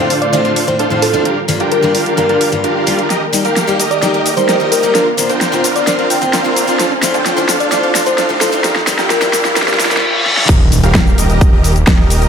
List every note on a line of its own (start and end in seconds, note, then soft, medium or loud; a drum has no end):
0.00 1.24 A2 medium
0.00 1.22 D3 medium
0.00 1.24 A3 medium
0.00 0.10 D4 medium
0.00 0.10 F4 loud
0.00 3.06 F4 medium
0.00 1.22 C5 medium
0.00 riser medium
0.10 0.42 D4 medium
0.10 0.42 F4 medium
0.10 0.42 A4 medium
0.10 0.42 C5 medium
0.10 0.42 F5 medium
0.10 open hi-hat loud
0.22 0.29 D5 medium
0.22 closed hi-hat soft
0.33 0.51 A2 loud
0.33 0.51 A3 medium
0.33 0.51 C4 medium
0.33 0.51 D4 medium
0.33 0.52 F4 loud
0.33 0.41 D5 medium
0.33 closed hi-hat medium
0.45 0.65 D4 medium
0.45 0.65 F4 medium
0.45 0.65 A4 medium
0.45 0.65 C5 medium
0.45 0.65 F5 loud
0.45 closed hi-hat soft
0.56 open hi-hat loud
0.67 0.86 A2 medium
0.67 0.86 A3 medium
0.67 0.86 C4 medium
0.67 0.86 D4 medium
0.67 0.86 F4 medium
0.67 0.87 C5 medium
0.67 closed hi-hat soft
0.79 1.23 D4 loud
0.79 1.23 F4 medium
0.79 1.23 A4 medium
0.79 1.23 C5 medium
0.79 1.23 F5 loud
0.79 closed hi-hat medium
0.90 1.11 A2 medium
0.90 1.11 A3 medium
0.90 1.11 C4 medium
0.90 1.12 D4 medium
0.90 1.12 F4 medium
1.02 1.22 A4 medium
1.02 open hi-hat loud
1.13 1.24 A3 medium
1.13 1.24 C4 medium
1.13 1.24 D4 medium
1.13 1.25 F4 medium
1.13 closed hi-hat soft
1.25 3.08 D3 medium
1.25 3.09 G3 medium
1.25 1.38 D4 medium
1.25 1.38 F4 medium
1.25 1.38 G4 medium
1.25 1.38 A#4 medium
1.25 6.76 A#4 medium
1.25 1.38 F5 loud
1.25 closed hi-hat medium
1.48 1.60 G2 medium
1.48 1.60 G3 medium
1.48 1.60 A#3 medium
1.48 1.60 D4 medium
1.48 1.60 F4 loud
1.48 open hi-hat loud
1.60 1.92 D4 medium
1.60 1.92 F4 medium
1.60 1.92 G4 medium
1.60 1.92 A#4 medium
1.60 1.92 G5 loud
1.60 closed hi-hat soft
1.72 1.91 A#4 medium
1.72 closed hi-hat medium
1.82 1.94 G2 medium
1.82 1.94 G3 medium
1.82 1.94 A#3 medium
1.82 1.95 D4 medium
1.82 1.95 F4 loud
1.95 2.27 D4 medium
1.95 2.27 F4 medium
1.95 2.27 G4 medium
1.95 2.27 A#4 medium
1.95 2.27 F5 medium
1.95 open hi-hat loud
2.06 closed hi-hat soft
2.17 2.35 G2 medium
2.17 2.36 G3 medium
2.17 2.36 A#3 medium
2.17 2.36 D4 medium
2.17 2.36 F4 medium
2.17 2.25 A#4 medium
2.17 closed hi-hat medium
2.29 2.49 D4 medium
2.29 2.49 F4 medium
2.29 2.49 G4 medium
2.29 2.49 A#4 medium
2.29 2.37 A#4 medium
2.29 2.49 F5 loud
2.29 closed hi-hat soft
2.41 open hi-hat loud
2.52 2.63 G2 medium
2.52 2.64 G3 medium
2.52 2.64 A#3 medium
2.52 2.64 D4 medium
2.52 2.64 F4 medium
2.52 closed hi-hat soft
2.64 3.07 D4 loud
2.64 3.07 F4 medium
2.64 3.07 G4 medium
2.64 3.07 A#4 medium
2.64 3.07 F5 loud
2.64 closed hi-hat medium
2.87 2.98 G3 medium
2.87 2.98 A#3 medium
2.87 2.98 D4 medium
2.87 2.99 F4 medium
2.87 open hi-hat loud
2.99 closed hi-hat soft
3.10 4.93 D#3 medium
3.10 4.93 A#3 medium
3.10 4.93 G4 medium
3.10 3.23 G4 medium
3.10 3.23 A#4 medium
3.10 3.23 D#5 medium
3.10 snare soft
3.10 closed hi-hat medium
3.10 shaker soft
3.33 3.44 G3 medium
3.33 3.44 A#3 medium
3.33 3.45 D#4 medium
3.33 3.45 G4 loud
3.33 open hi-hat loud
3.33 shaker medium
3.45 3.77 G4 medium
3.45 3.77 A#4 medium
3.45 3.77 F5 medium
3.45 closed hi-hat soft
3.45 shaker soft
3.56 snare medium
3.56 closed hi-hat medium
3.56 shaker soft
3.67 3.79 G3 medium
3.67 3.79 A#3 medium
3.67 3.79 D#4 medium
3.67 3.79 G4 loud
3.67 shaker soft
3.80 4.11 G4 medium
3.80 4.11 A#4 medium
3.80 4.11 D#5 medium
3.80 open hi-hat loud
3.80 shaker medium
3.91 3.98 D5 medium
3.91 closed hi-hat soft
3.91 shaker soft
4.02 4.20 G3 medium
4.02 4.20 A#3 medium
4.02 4.21 D#4 medium
4.02 4.21 G4 medium
4.02 4.10 D5 medium
4.02 snare medium
4.02 closed hi-hat medium
4.02 shaker soft
4.14 4.34 G4 loud
4.14 4.34 A#4 medium
4.14 4.34 D#5 loud
4.14 closed hi-hat soft
4.26 open hi-hat loud
4.26 shaker medium
4.37 4.55 G3 medium
4.37 4.55 A#3 medium
4.37 4.55 D#4 medium
4.37 4.55 G4 medium
4.37 4.56 C5 medium
4.37 closed hi-hat soft
4.37 shaker soft
4.49 4.92 G4 loud
4.49 4.92 A#4 medium
4.49 4.92 D#5 loud
4.49 snare medium
4.49 closed hi-hat medium
4.49 shaker soft
4.60 4.80 G3 medium
4.60 4.81 A#3 medium
4.60 4.81 D#4 medium
4.60 4.81 F4 medium
4.72 4.91 A#4 medium
4.72 open hi-hat loud
4.72 shaker medium
4.83 4.93 G3 medium
4.83 4.93 A#3 medium
4.83 4.94 D#4 medium
4.83 4.94 G4 loud
4.83 closed hi-hat soft
4.83 shaker soft
4.95 9.98 D3 medium
4.95 8.60 C4 medium
4.95 5.07 D4 medium
4.95 6.78 F4 medium
4.95 5.07 F4 medium
4.95 5.14 A#4 medium
4.95 5.07 A#4 medium
4.95 5.07 C5 medium
4.95 5.07 F5 loud
4.95 snare medium
4.95 closed hi-hat medium
4.95 shaker soft
5.17 5.29 A#2 medium
5.17 5.29 A#3 medium
5.17 5.29 C4 medium
5.17 5.29 D4 medium
5.17 5.29 F4 loud
5.17 open hi-hat loud
5.17 shaker medium
5.29 5.61 D4 medium
5.29 5.61 F4 medium
5.29 5.61 A#4 medium
5.29 5.61 C5 medium
5.29 5.61 G5 medium
5.29 closed hi-hat medium
5.29 shaker soft
5.41 snare medium
5.41 closed hi-hat medium
5.41 shaker soft
5.52 5.63 A#2 medium
5.52 5.64 A#3 medium
5.52 5.64 C4 medium
5.52 5.64 D4 medium
5.52 5.64 F4 loud
5.52 shaker soft
5.64 5.96 D4 medium
5.64 5.96 F4 medium
5.64 5.96 A#4 medium
5.64 5.96 C5 medium
5.64 5.96 F5 medium
5.64 open hi-hat loud
5.64 shaker medium
5.76 5.83 D5 medium
5.76 closed hi-hat medium
5.76 shaker soft
5.87 6.05 A#2 medium
5.87 6.05 A#3 medium
5.87 6.05 C4 medium
5.87 6.05 D4 medium
5.87 6.05 F4 loud
5.87 5.95 D5 medium
5.87 snare medium
5.87 closed hi-hat medium
5.87 shaker soft
5.99 6.19 D4 loud
5.99 6.19 F4 medium
5.99 6.19 A#4 medium
5.99 6.19 C5 medium
5.99 6.19 F5 loud
5.99 closed hi-hat soft
6.10 6.18 G5 medium
6.10 open hi-hat loud
6.10 shaker medium
6.21 6.39 A#2 medium
6.21 6.40 A#3 medium
6.21 6.40 C4 medium
6.21 6.40 D4 medium
6.21 6.40 F4 medium
6.21 6.29 G5 medium
6.21 closed hi-hat soft
6.21 shaker soft
6.33 6.77 D4 loud
6.33 6.77 F4 medium
6.33 6.77 A#4 medium
6.33 6.77 C5 medium
6.33 6.77 F5 loud
6.33 snare medium
6.33 closed hi-hat medium
6.33 shaker soft
6.44 6.65 A#2 medium
6.44 6.65 A#3 medium
6.44 6.65 C4 medium
6.44 6.65 D4 medium
6.44 6.66 F4 medium
6.56 open hi-hat loud
6.56 shaker medium
6.67 6.78 A#3 medium
6.67 6.78 C4 medium
6.67 6.78 D4 medium
6.67 6.79 F4 medium
6.67 closed hi-hat soft
6.67 shaker soft
6.79 8.62 A2 medium
6.79 6.92 D4 medium
6.79 6.92 F4 medium
6.79 9.99 F4 medium
6.79 6.92 A4 medium
6.79 8.62 A4 medium
6.79 6.92 C5 medium
6.79 6.92 F5 loud
6.79 snare medium
6.79 closed hi-hat medium
6.79 shaker soft
7.02 7.13 A2 loud
7.02 7.14 A3 medium
7.02 7.14 C4 medium
7.02 7.14 D4 medium
7.02 7.14 F4 loud
7.02 snare medium
7.02 open hi-hat medium
7.02 shaker medium
7.14 7.46 D4 medium
7.14 7.46 F4 medium
7.14 7.46 A4 medium
7.14 7.46 C5 medium
7.14 7.46 G5 medium
7.14 closed hi-hat medium
7.14 shaker soft
7.26 snare medium
7.26 closed hi-hat medium
7.26 shaker soft
7.37 7.48 A2 medium
7.37 7.48 A3 medium
7.37 7.48 C4 medium
7.37 7.49 D4 medium
7.37 7.49 F4 loud
7.37 shaker soft
7.49 7.81 D4 medium
7.49 7.81 F4 medium
7.49 7.81 A4 medium
7.49 7.81 C5 medium
7.49 7.81 F5 medium
7.49 snare medium
7.49 open hi-hat loud
7.49 shaker medium
7.60 7.68 D5 medium
7.60 closed hi-hat medium
7.60 shaker soft
7.71 7.89 A2 medium
7.71 7.90 A3 medium
7.71 7.90 C4 medium
7.71 7.90 D4 medium
7.71 7.90 F4 loud
7.71 7.79 D5 medium
7.71 snare medium
7.71 closed hi-hat medium
7.71 shaker soft
7.83 8.03 D4 loud
7.83 8.03 F4 medium
7.83 8.03 A4 medium
7.83 8.03 C5 medium
7.83 8.03 F5 loud
7.83 closed hi-hat soft
7.95 snare medium
7.95 open hi-hat medium
7.95 shaker medium
8.06 8.24 A2 medium
8.06 8.24 A3 medium
8.06 8.24 C4 medium
8.06 8.25 D4 medium
8.06 8.25 F4 medium
8.06 8.26 C5 medium
8.06 closed hi-hat medium
8.06 shaker soft
8.18 8.62 D4 loud
8.18 8.62 F4 medium
8.18 8.62 A4 medium
8.18 8.62 C5 medium
8.18 8.62 F5 loud
8.18 snare medium
8.18 closed hi-hat medium
8.18 shaker soft
8.29 8.50 A2 medium
8.29 8.50 A3 medium
8.29 8.50 C4 medium
8.29 8.50 D4 medium
8.29 8.50 F4 medium
8.41 8.60 A4 medium
8.41 snare medium
8.41 open hi-hat loud
8.41 shaker medium
8.52 8.63 A3 medium
8.52 8.63 C4 medium
8.52 8.63 D4 medium
8.52 8.63 F4 loud
8.52 closed hi-hat medium
8.52 shaker soft
8.64 10.01 A#3 medium
8.64 8.77 D4 medium
8.64 8.77 F4 medium
8.64 8.77 G4 medium
8.64 10.01 G4 medium
8.64 8.77 A#4 medium
8.64 8.77 F5 loud
8.64 snare medium
8.64 closed hi-hat medium
8.64 shaker soft
8.76 snare medium
8.86 8.98 G2 loud
8.86 8.98 G3 medium
8.86 8.98 A#3 medium
8.86 8.99 D4 medium
8.86 8.99 F4 loud
8.86 snare medium
8.86 open hi-hat loud
8.86 shaker medium
8.99 9.31 D4 medium
8.99 9.31 F4 medium
8.99 9.31 G4 medium
8.99 9.31 A#4 medium
8.99 9.31 G5 medium
8.99 snare medium
8.99 closed hi-hat medium
8.99 shaker soft
9.10 9.29 A#4 loud
9.10 snare loud
9.10 closed hi-hat medium
9.10 shaker soft
9.21 9.33 G2 medium
9.21 9.33 G3 medium
9.21 9.33 A#3 medium
9.21 9.33 D4 medium
9.21 9.33 F4 loud
9.21 snare medium
9.21 closed hi-hat soft
9.21 shaker soft
9.33 9.65 D4 medium
9.33 9.65 F4 medium
9.33 9.65 G4 medium
9.33 9.65 A#4 medium
9.33 9.65 F5 medium
9.33 snare loud
9.33 open hi-hat loud
9.33 shaker medium
9.45 snare medium
9.45 closed hi-hat medium
9.45 shaker soft
9.56 9.74 G2 medium
9.56 9.74 G3 medium
9.56 9.74 A#3 medium
9.56 9.74 D4 medium
9.56 9.75 F4 loud
9.56 9.64 A#4 medium
9.56 snare loud
9.56 closed hi-hat medium
9.56 reverse cymbal medium
9.56 shaker soft
9.62 snare medium
9.68 9.88 D4 loud
9.68 9.88 F4 medium
9.68 9.88 G4 medium
9.68 9.75 A#4 medium
9.68 9.88 A#4 medium
9.68 9.88 F5 loud
9.68 snare medium
9.68 closed hi-hat soft
9.68 shaker soft
9.74 snare medium
9.80 snare loud
9.80 open hi-hat loud
9.80 shaker medium
9.85 snare medium
9.90 10.02 G2 medium
9.90 10.02 G3 medium
9.90 10.03 A#3 medium
9.90 10.03 D4 medium
9.90 10.03 F4 medium
9.90 snare medium
9.90 closed hi-hat medium
9.90 shaker soft
9.97 snare loud
10.26 snare medium
10.37 snare medium
10.49 10.81 D#1 loud
10.49 12.29 D#3 medium
10.49 12.29 G3 medium
10.49 12.29 A#3 medium
10.49 12.29 G4 medium
10.49 10.61 G4 medium
10.49 10.61 A#4 medium
10.49 10.61 D#5 loud
10.49 kick loud
10.49 closed hi-hat medium
10.49 crash loud
10.49 impact medium
10.49 shaker soft
10.72 open hi-hat loud
10.72 shaker medium
10.83 11.16 D#1 loud
10.83 11.15 G4 medium
10.83 11.15 A#4 medium
10.83 11.15 F5 loud
10.83 closed hi-hat medium
10.83 shaker soft
10.95 kick loud
10.95 snare loud
10.95 closed hi-hat medium
10.95 shaker soft
11.07 shaker soft
11.18 11.50 D#1 medium
11.18 11.50 G4 medium
11.18 11.50 A#4 medium
11.18 11.50 D#5 medium
11.18 open hi-hat loud
11.18 shaker medium
11.30 closed hi-hat medium
11.30 shaker soft
11.41 kick loud
11.41 closed hi-hat medium
11.41 shaker soft
11.53 11.85 D#1 loud
11.53 11.72 G4 loud
11.53 11.72 A#4 medium
11.53 11.72 D#5 loud
11.64 open hi-hat loud
11.64 shaker medium
11.76 closed hi-hat medium
11.76 shaker soft
11.87 12.29 D#1 medium
11.87 12.29 G4 loud
11.87 12.29 A#4 medium
11.87 12.29 D#5 loud
11.87 kick loud
11.87 snare loud
11.87 closed hi-hat medium
11.87 shaker soft
11.99 snare soft
12.10 open hi-hat loud
12.10 shaker medium
12.22 closed hi-hat medium
12.22 shaker soft